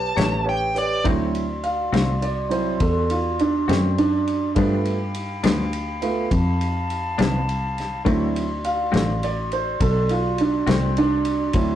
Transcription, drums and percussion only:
0, 0, Header, 1, 2, 480
1, 0, Start_track
1, 0, Tempo, 583090
1, 864, Time_signature, 12, 3, 24, 8
1, 9676, End_track
2, 0, Start_track
2, 0, Title_t, "Drums"
2, 144, Note_on_c, 9, 42, 67
2, 161, Note_on_c, 9, 38, 96
2, 226, Note_off_c, 9, 42, 0
2, 244, Note_off_c, 9, 38, 0
2, 626, Note_on_c, 9, 42, 54
2, 708, Note_off_c, 9, 42, 0
2, 866, Note_on_c, 9, 36, 103
2, 867, Note_on_c, 9, 51, 71
2, 948, Note_off_c, 9, 36, 0
2, 949, Note_off_c, 9, 51, 0
2, 1109, Note_on_c, 9, 51, 58
2, 1192, Note_off_c, 9, 51, 0
2, 1347, Note_on_c, 9, 51, 55
2, 1429, Note_off_c, 9, 51, 0
2, 1593, Note_on_c, 9, 51, 67
2, 1611, Note_on_c, 9, 38, 89
2, 1676, Note_off_c, 9, 51, 0
2, 1693, Note_off_c, 9, 38, 0
2, 1830, Note_on_c, 9, 51, 59
2, 1912, Note_off_c, 9, 51, 0
2, 2068, Note_on_c, 9, 51, 60
2, 2150, Note_off_c, 9, 51, 0
2, 2306, Note_on_c, 9, 51, 72
2, 2309, Note_on_c, 9, 36, 101
2, 2388, Note_off_c, 9, 51, 0
2, 2392, Note_off_c, 9, 36, 0
2, 2550, Note_on_c, 9, 51, 63
2, 2632, Note_off_c, 9, 51, 0
2, 2794, Note_on_c, 9, 51, 54
2, 2876, Note_off_c, 9, 51, 0
2, 3040, Note_on_c, 9, 51, 71
2, 3057, Note_on_c, 9, 38, 101
2, 3122, Note_off_c, 9, 51, 0
2, 3139, Note_off_c, 9, 38, 0
2, 3279, Note_on_c, 9, 51, 66
2, 3361, Note_off_c, 9, 51, 0
2, 3519, Note_on_c, 9, 51, 53
2, 3602, Note_off_c, 9, 51, 0
2, 3753, Note_on_c, 9, 51, 75
2, 3756, Note_on_c, 9, 36, 106
2, 3835, Note_off_c, 9, 51, 0
2, 3838, Note_off_c, 9, 36, 0
2, 3996, Note_on_c, 9, 51, 60
2, 4078, Note_off_c, 9, 51, 0
2, 4235, Note_on_c, 9, 51, 67
2, 4318, Note_off_c, 9, 51, 0
2, 4475, Note_on_c, 9, 51, 90
2, 4492, Note_on_c, 9, 38, 98
2, 4557, Note_off_c, 9, 51, 0
2, 4574, Note_off_c, 9, 38, 0
2, 4717, Note_on_c, 9, 51, 65
2, 4799, Note_off_c, 9, 51, 0
2, 4956, Note_on_c, 9, 51, 64
2, 5038, Note_off_c, 9, 51, 0
2, 5197, Note_on_c, 9, 36, 108
2, 5198, Note_on_c, 9, 51, 74
2, 5279, Note_off_c, 9, 36, 0
2, 5280, Note_off_c, 9, 51, 0
2, 5441, Note_on_c, 9, 51, 58
2, 5524, Note_off_c, 9, 51, 0
2, 5681, Note_on_c, 9, 51, 58
2, 5763, Note_off_c, 9, 51, 0
2, 5916, Note_on_c, 9, 51, 69
2, 5933, Note_on_c, 9, 38, 99
2, 5998, Note_off_c, 9, 51, 0
2, 6016, Note_off_c, 9, 38, 0
2, 6164, Note_on_c, 9, 51, 61
2, 6246, Note_off_c, 9, 51, 0
2, 6404, Note_on_c, 9, 51, 53
2, 6422, Note_on_c, 9, 38, 33
2, 6487, Note_off_c, 9, 51, 0
2, 6504, Note_off_c, 9, 38, 0
2, 6637, Note_on_c, 9, 36, 100
2, 6638, Note_on_c, 9, 51, 71
2, 6720, Note_off_c, 9, 36, 0
2, 6721, Note_off_c, 9, 51, 0
2, 6883, Note_on_c, 9, 51, 64
2, 6966, Note_off_c, 9, 51, 0
2, 7116, Note_on_c, 9, 51, 62
2, 7198, Note_off_c, 9, 51, 0
2, 7356, Note_on_c, 9, 51, 74
2, 7373, Note_on_c, 9, 38, 108
2, 7439, Note_off_c, 9, 51, 0
2, 7456, Note_off_c, 9, 38, 0
2, 7598, Note_on_c, 9, 51, 65
2, 7681, Note_off_c, 9, 51, 0
2, 7834, Note_on_c, 9, 51, 62
2, 7916, Note_off_c, 9, 51, 0
2, 8072, Note_on_c, 9, 36, 113
2, 8072, Note_on_c, 9, 51, 88
2, 8154, Note_off_c, 9, 36, 0
2, 8155, Note_off_c, 9, 51, 0
2, 8308, Note_on_c, 9, 51, 70
2, 8390, Note_off_c, 9, 51, 0
2, 8547, Note_on_c, 9, 51, 66
2, 8629, Note_off_c, 9, 51, 0
2, 8786, Note_on_c, 9, 51, 77
2, 8803, Note_on_c, 9, 38, 104
2, 8868, Note_off_c, 9, 51, 0
2, 8885, Note_off_c, 9, 38, 0
2, 9029, Note_on_c, 9, 51, 64
2, 9111, Note_off_c, 9, 51, 0
2, 9260, Note_on_c, 9, 51, 66
2, 9342, Note_off_c, 9, 51, 0
2, 9494, Note_on_c, 9, 51, 77
2, 9500, Note_on_c, 9, 36, 103
2, 9576, Note_off_c, 9, 51, 0
2, 9583, Note_off_c, 9, 36, 0
2, 9676, End_track
0, 0, End_of_file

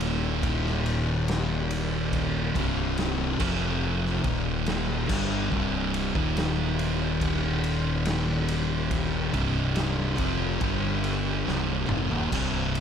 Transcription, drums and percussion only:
0, 0, Header, 1, 2, 480
1, 0, Start_track
1, 0, Tempo, 848656
1, 1204, Time_signature, 4, 2, 24, 8
1, 7240, End_track
2, 0, Start_track
2, 0, Title_t, "Drums"
2, 3, Note_on_c, 9, 51, 70
2, 60, Note_off_c, 9, 51, 0
2, 244, Note_on_c, 9, 36, 112
2, 244, Note_on_c, 9, 51, 108
2, 300, Note_off_c, 9, 51, 0
2, 301, Note_off_c, 9, 36, 0
2, 375, Note_on_c, 9, 38, 36
2, 431, Note_off_c, 9, 38, 0
2, 486, Note_on_c, 9, 51, 73
2, 542, Note_off_c, 9, 51, 0
2, 725, Note_on_c, 9, 51, 106
2, 733, Note_on_c, 9, 38, 124
2, 781, Note_off_c, 9, 51, 0
2, 790, Note_off_c, 9, 38, 0
2, 965, Note_on_c, 9, 51, 85
2, 1021, Note_off_c, 9, 51, 0
2, 1204, Note_on_c, 9, 36, 98
2, 1204, Note_on_c, 9, 51, 94
2, 1260, Note_off_c, 9, 36, 0
2, 1261, Note_off_c, 9, 51, 0
2, 1444, Note_on_c, 9, 36, 122
2, 1446, Note_on_c, 9, 51, 74
2, 1501, Note_off_c, 9, 36, 0
2, 1503, Note_off_c, 9, 51, 0
2, 1683, Note_on_c, 9, 51, 98
2, 1691, Note_on_c, 9, 38, 109
2, 1739, Note_off_c, 9, 51, 0
2, 1748, Note_off_c, 9, 38, 0
2, 1922, Note_on_c, 9, 49, 98
2, 1923, Note_on_c, 9, 36, 103
2, 1978, Note_off_c, 9, 49, 0
2, 1979, Note_off_c, 9, 36, 0
2, 2293, Note_on_c, 9, 38, 34
2, 2349, Note_off_c, 9, 38, 0
2, 2399, Note_on_c, 9, 51, 64
2, 2401, Note_on_c, 9, 36, 105
2, 2455, Note_off_c, 9, 51, 0
2, 2458, Note_off_c, 9, 36, 0
2, 2638, Note_on_c, 9, 51, 102
2, 2646, Note_on_c, 9, 38, 111
2, 2694, Note_off_c, 9, 51, 0
2, 2703, Note_off_c, 9, 38, 0
2, 2880, Note_on_c, 9, 49, 108
2, 2882, Note_on_c, 9, 36, 107
2, 2937, Note_off_c, 9, 49, 0
2, 2938, Note_off_c, 9, 36, 0
2, 3122, Note_on_c, 9, 36, 101
2, 3178, Note_off_c, 9, 36, 0
2, 3360, Note_on_c, 9, 51, 77
2, 3417, Note_off_c, 9, 51, 0
2, 3481, Note_on_c, 9, 36, 108
2, 3537, Note_off_c, 9, 36, 0
2, 3601, Note_on_c, 9, 51, 101
2, 3609, Note_on_c, 9, 38, 113
2, 3657, Note_off_c, 9, 51, 0
2, 3666, Note_off_c, 9, 38, 0
2, 3841, Note_on_c, 9, 51, 76
2, 3898, Note_off_c, 9, 51, 0
2, 4080, Note_on_c, 9, 36, 105
2, 4080, Note_on_c, 9, 51, 108
2, 4137, Note_off_c, 9, 36, 0
2, 4137, Note_off_c, 9, 51, 0
2, 4320, Note_on_c, 9, 51, 76
2, 4376, Note_off_c, 9, 51, 0
2, 4556, Note_on_c, 9, 51, 113
2, 4564, Note_on_c, 9, 38, 110
2, 4612, Note_off_c, 9, 51, 0
2, 4621, Note_off_c, 9, 38, 0
2, 4799, Note_on_c, 9, 51, 90
2, 4855, Note_off_c, 9, 51, 0
2, 5039, Note_on_c, 9, 51, 105
2, 5040, Note_on_c, 9, 36, 106
2, 5095, Note_off_c, 9, 51, 0
2, 5097, Note_off_c, 9, 36, 0
2, 5281, Note_on_c, 9, 36, 106
2, 5281, Note_on_c, 9, 51, 78
2, 5337, Note_off_c, 9, 36, 0
2, 5338, Note_off_c, 9, 51, 0
2, 5517, Note_on_c, 9, 51, 112
2, 5526, Note_on_c, 9, 38, 118
2, 5574, Note_off_c, 9, 51, 0
2, 5582, Note_off_c, 9, 38, 0
2, 5758, Note_on_c, 9, 51, 70
2, 5761, Note_on_c, 9, 36, 98
2, 5815, Note_off_c, 9, 51, 0
2, 5818, Note_off_c, 9, 36, 0
2, 6000, Note_on_c, 9, 51, 93
2, 6002, Note_on_c, 9, 36, 109
2, 6056, Note_off_c, 9, 51, 0
2, 6058, Note_off_c, 9, 36, 0
2, 6243, Note_on_c, 9, 51, 68
2, 6299, Note_off_c, 9, 51, 0
2, 6494, Note_on_c, 9, 38, 64
2, 6550, Note_off_c, 9, 38, 0
2, 6724, Note_on_c, 9, 45, 102
2, 6781, Note_off_c, 9, 45, 0
2, 6850, Note_on_c, 9, 43, 81
2, 6907, Note_off_c, 9, 43, 0
2, 6969, Note_on_c, 9, 36, 106
2, 6970, Note_on_c, 9, 49, 100
2, 6970, Note_on_c, 9, 55, 87
2, 7026, Note_off_c, 9, 36, 0
2, 7027, Note_off_c, 9, 49, 0
2, 7027, Note_off_c, 9, 55, 0
2, 7212, Note_on_c, 9, 51, 79
2, 7240, Note_off_c, 9, 51, 0
2, 7240, End_track
0, 0, End_of_file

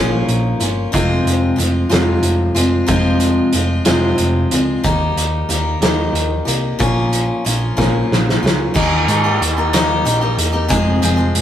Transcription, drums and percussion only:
0, 0, Header, 1, 2, 480
1, 0, Start_track
1, 0, Tempo, 650759
1, 692, Time_signature, 6, 3, 24, 8
1, 8419, End_track
2, 0, Start_track
2, 0, Title_t, "Drums"
2, 211, Note_on_c, 9, 42, 48
2, 284, Note_off_c, 9, 42, 0
2, 446, Note_on_c, 9, 42, 52
2, 520, Note_off_c, 9, 42, 0
2, 692, Note_on_c, 9, 36, 93
2, 699, Note_on_c, 9, 42, 75
2, 766, Note_off_c, 9, 36, 0
2, 772, Note_off_c, 9, 42, 0
2, 938, Note_on_c, 9, 42, 54
2, 1011, Note_off_c, 9, 42, 0
2, 1175, Note_on_c, 9, 42, 56
2, 1249, Note_off_c, 9, 42, 0
2, 1413, Note_on_c, 9, 42, 66
2, 1421, Note_on_c, 9, 38, 91
2, 1487, Note_off_c, 9, 42, 0
2, 1495, Note_off_c, 9, 38, 0
2, 1644, Note_on_c, 9, 42, 55
2, 1717, Note_off_c, 9, 42, 0
2, 1889, Note_on_c, 9, 42, 64
2, 1962, Note_off_c, 9, 42, 0
2, 2125, Note_on_c, 9, 42, 73
2, 2129, Note_on_c, 9, 36, 105
2, 2198, Note_off_c, 9, 42, 0
2, 2202, Note_off_c, 9, 36, 0
2, 2360, Note_on_c, 9, 42, 57
2, 2434, Note_off_c, 9, 42, 0
2, 2601, Note_on_c, 9, 42, 58
2, 2674, Note_off_c, 9, 42, 0
2, 2840, Note_on_c, 9, 42, 72
2, 2847, Note_on_c, 9, 38, 95
2, 2914, Note_off_c, 9, 42, 0
2, 2921, Note_off_c, 9, 38, 0
2, 3083, Note_on_c, 9, 42, 59
2, 3156, Note_off_c, 9, 42, 0
2, 3329, Note_on_c, 9, 42, 61
2, 3403, Note_off_c, 9, 42, 0
2, 3573, Note_on_c, 9, 36, 94
2, 3574, Note_on_c, 9, 42, 73
2, 3647, Note_off_c, 9, 36, 0
2, 3648, Note_off_c, 9, 42, 0
2, 3817, Note_on_c, 9, 42, 57
2, 3890, Note_off_c, 9, 42, 0
2, 4056, Note_on_c, 9, 42, 53
2, 4130, Note_off_c, 9, 42, 0
2, 4292, Note_on_c, 9, 42, 66
2, 4300, Note_on_c, 9, 38, 92
2, 4366, Note_off_c, 9, 42, 0
2, 4373, Note_off_c, 9, 38, 0
2, 4538, Note_on_c, 9, 42, 54
2, 4612, Note_off_c, 9, 42, 0
2, 4778, Note_on_c, 9, 42, 58
2, 4852, Note_off_c, 9, 42, 0
2, 5018, Note_on_c, 9, 36, 95
2, 5021, Note_on_c, 9, 42, 66
2, 5092, Note_off_c, 9, 36, 0
2, 5095, Note_off_c, 9, 42, 0
2, 5256, Note_on_c, 9, 42, 51
2, 5330, Note_off_c, 9, 42, 0
2, 5504, Note_on_c, 9, 42, 58
2, 5578, Note_off_c, 9, 42, 0
2, 5739, Note_on_c, 9, 36, 66
2, 5753, Note_on_c, 9, 38, 49
2, 5813, Note_off_c, 9, 36, 0
2, 5827, Note_off_c, 9, 38, 0
2, 5993, Note_on_c, 9, 38, 69
2, 6066, Note_off_c, 9, 38, 0
2, 6116, Note_on_c, 9, 38, 57
2, 6190, Note_off_c, 9, 38, 0
2, 6241, Note_on_c, 9, 38, 85
2, 6315, Note_off_c, 9, 38, 0
2, 6459, Note_on_c, 9, 36, 105
2, 6464, Note_on_c, 9, 49, 102
2, 6533, Note_off_c, 9, 36, 0
2, 6538, Note_off_c, 9, 49, 0
2, 6701, Note_on_c, 9, 42, 67
2, 6774, Note_off_c, 9, 42, 0
2, 6950, Note_on_c, 9, 42, 67
2, 7023, Note_off_c, 9, 42, 0
2, 7180, Note_on_c, 9, 42, 88
2, 7187, Note_on_c, 9, 38, 99
2, 7253, Note_off_c, 9, 42, 0
2, 7261, Note_off_c, 9, 38, 0
2, 7424, Note_on_c, 9, 42, 67
2, 7498, Note_off_c, 9, 42, 0
2, 7661, Note_on_c, 9, 42, 65
2, 7735, Note_off_c, 9, 42, 0
2, 7895, Note_on_c, 9, 36, 98
2, 7900, Note_on_c, 9, 42, 82
2, 7969, Note_off_c, 9, 36, 0
2, 7973, Note_off_c, 9, 42, 0
2, 8133, Note_on_c, 9, 42, 62
2, 8207, Note_off_c, 9, 42, 0
2, 8372, Note_on_c, 9, 42, 65
2, 8419, Note_off_c, 9, 42, 0
2, 8419, End_track
0, 0, End_of_file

